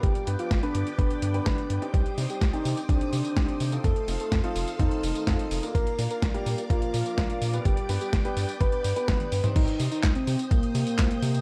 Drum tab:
CC |----------------|----------------|----------------|----------------|
HH |xxxxxxxxxxxxxxxx|xxoxxxoxxxoxxxox|xxoxxxoxxxoxxxox|xxoxxxoxxxoxxxox|
TB |----------------|x-xxx-xxx-xxx-xx|x-xxx-xxx-xxx-xx|x-xxx-xxx-xxx-xx|
CP |----------------|----------------|----------------|----------------|
SD |----o-------o---|----o-------o---|----o-------o---|----o-------o---|
T1 |----------------|----------------|----------------|----------------|
T2 |----------------|----------------|----------------|----------------|
BD |o---o---o---o---|o---o---o---o---|o---o---o---o---|o---o---o---o---|

CC |----------------|x---------------|
HH |xxoxxxoxxxoxxxox|xxoxxxoxxxoxxxox|
TB |x-xxx-xxx-xxx-xx|x-xxx-xxx-xxx-xx|
CP |----------------|----x-------x---|
SD |----o-------o---|----o-------o---|
T1 |------------oo--|----------------|
T2 |---------------o|----------------|
BD |o---o---o---o---|o---o---o---o---|